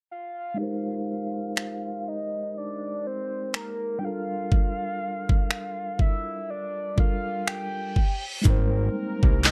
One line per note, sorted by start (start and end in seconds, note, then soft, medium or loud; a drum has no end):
0.11 2.10 F5 loud
0.54 3.97 G#3 medium
0.54 3.98 D#4 medium
0.59 3.99 G4 medium
0.59 4.00 A#4 medium
0.63 4.01 C5 medium
1.57 finger snap loud
2.08 2.56 D#5 medium
2.57 3.08 D5 medium
3.07 3.55 C5 medium
3.54 4.00 A#4 medium
3.54 finger snap loud
3.99 6.92 G3 medium
3.99 6.93 D4 medium
3.99 4.06 G5 medium
4.03 6.94 F4 medium
4.03 6.95 A4 medium
4.03 6.96 A#4 medium
4.03 6.00 F5 loud
4.52 kick loud
5.29 kick medium
5.51 finger snap loud
5.99 6.52 E5 medium
5.99 kick medium
6.48 6.99 D5 loud
6.48 reverse cymbal medium
6.96 7.95 G3 soft
6.96 7.96 D4 soft
6.96 7.96 F4 soft
6.96 7.97 A4 soft
6.96 7.97 A#4 medium
6.96 7.50 F5 loud
6.96 kick medium
7.48 8.25 G5 loud
7.48 finger snap loud
7.96 kick medium
8.42 8.89 G#1 loud
8.42 9.51 G3 medium
8.42 9.51 G#3 medium
8.42 9.51 C4 medium
8.42 9.51 D#4 medium
8.42 9.51 A#4 medium
8.42 kick loud
8.42 closed hi-hat medium
8.46 9.51 A#3 medium
8.46 9.51 A#4 medium
8.46 9.51 C5 medium
9.23 9.51 C2 medium
9.23 kick loud
9.43 9.51 D#5 medium
9.43 clap loud
9.43 closed hi-hat medium